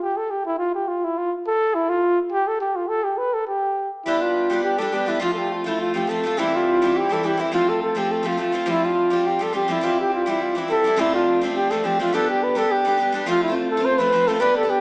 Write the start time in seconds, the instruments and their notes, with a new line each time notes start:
0.02 trumpet G4
0.17 trumpet A4
0.31 trumpet G4
0.46 trumpet E4
0.58 trumpet F4
0.75 trumpet G4
0.88 trumpet F4
1.04 trumpet E4
1.18 trumpet F4
1.47 trumpet A4
1.75 trumpet E4
1.89 trumpet F4
2.32 trumpet G4
2.47 trumpet A4
2.61 trumpet G4
2.76 trumpet F4
2.88 trumpet A4
3.04 trumpet G4
3.17 trumpet B4
3.34 trumpet A4
3.48 trumpet G4
4.06 twelve-string acoustic guitar G3 B3 D4 G4, trumpet E4
4.22 trumpet F4
4.50 twelve-string acoustic guitar G3 B3 D4 G4
4.64 trumpet G4
4.78 twelve-string acoustic guitar G3 B3 D4 G4, trumpet A4
4.92 twelve-string acoustic guitar G3 B3 D4 G4, trumpet G4
5.06 twelve-string acoustic guitar G3 B3 D4 G4, trumpet E4
5.20 twelve-string acoustic guitar F3 A3 C4 F4, trumpet F4
5.33 trumpet A4
5.38 trumpet G4
5.53 trumpet F4
5.64 twelve-string acoustic guitar F3 A3 C4 F4, trumpet E4
5.81 trumpet F4
5.94 twelve-string acoustic guitar F3 A3 C4 F4, trumpet G4
6.07 twelve-string acoustic guitar F3 A3 C4 F4, trumpet A4
6.23 twelve-string acoustic guitar F3 A3 C4 F4
6.37 twelve-string acoustic guitar C3 E3 G3 C4 E4, trumpet E4
6.56 trumpet F4
6.82 twelve-string acoustic guitar E3 G3 C4 E4
6.97 trumpet G4
7.09 twelve-string acoustic guitar E3 G3 C4 E4, trumpet A4
7.23 twelve-string acoustic guitar E3 G3 C4 E4, trumpet G4
7.37 twelve-string acoustic guitar E3 G3 C4 E4, trumpet E4
7.52 twelve-string acoustic guitar F3 A3 C4 F4, trumpet F4
7.69 trumpet A4
7.83 trumpet A4
7.95 twelve-string acoustic guitar F3 A3 C4 F4, trumpet G4
8.12 trumpet A4
8.23 twelve-string acoustic guitar F3 A3 C4 F4
8.27 trumpet F4
8.37 twelve-string acoustic guitar F3 A3 C4 F4, trumpet F4
8.52 twelve-string acoustic guitar F3 A3 C4 F4
8.66 twelve-string acoustic guitar F3 G3 C4 F4
8.70 trumpet E4
8.85 trumpet F4
9.10 twelve-string acoustic guitar F3 G3 C4 F4
9.27 trumpet G4
9.39 twelve-string acoustic guitar F3 G3 C4 F4, trumpet A4
9.52 twelve-string acoustic guitar F3 G3 C4 F4, trumpet G4
9.68 twelve-string acoustic guitar F3 G3 C4 F4, trumpet E4
9.81 twelve-string acoustic guitar E3 G3 C4 E4, trumpet F4
10.00 trumpet G4
10.13 trumpet F4
10.26 twelve-string acoustic guitar E3 G3 C4 E4, trumpet E4
10.42 trumpet F4
10.55 twelve-string acoustic guitar E3 G3 C4 E4
10.68 twelve-string acoustic guitar E3 G3 C4 E4, trumpet A4
10.84 twelve-string acoustic guitar E3 G3 C4 E4
10.96 twelve-string acoustic guitar F2 C3 F3 A3 C4 D4, trumpet E4
11.15 trumpet F4
11.41 twelve-string acoustic guitar F3 A3 C4 D4
11.56 trumpet G4
11.71 twelve-string acoustic guitar F3 A3 C4 D4, trumpet A4
11.84 twelve-string acoustic guitar F3 A3 C4 D4, trumpet G4
11.99 twelve-string acoustic guitar F3 A3 C4 D4, trumpet F4
12.13 twelve-string acoustic guitar G3 B3 D4 G4, trumpet A4
12.30 trumpet G4
12.43 trumpet B4
12.55 twelve-string acoustic guitar G3 B3 D4 G4, trumpet A4
12.72 trumpet G4
12.85 twelve-string acoustic guitar G3 B3 D4 G4
12.97 twelve-string acoustic guitar G3 B3 D4 G4
13.12 twelve-string acoustic guitar G3 B3 D4 G4
13.26 twelve-string acoustic guitar F3 A3 C4 F4, trumpet F4
13.43 trumpet E4
13.48 twelve-string acoustic guitar A3 C4 F4
13.55 trumpet F4
13.71 trumpet A4
13.77 twelve-string acoustic guitar A3 C4 F4
13.85 trumpet C5
13.98 twelve-string acoustic guitar F3 A3 C4 F4, trumpet B4
14.12 twelve-string acoustic guitar F3 A3 C4 F4
14.28 twelve-string acoustic guitar F3 A3 C4 F4, trumpet A4
14.40 twelve-string acoustic guitar G3 B3 D4 G4, trumpet B4
14.57 trumpet A4
14.63 twelve-string acoustic guitar B3 D4 G4
14.70 trumpet G4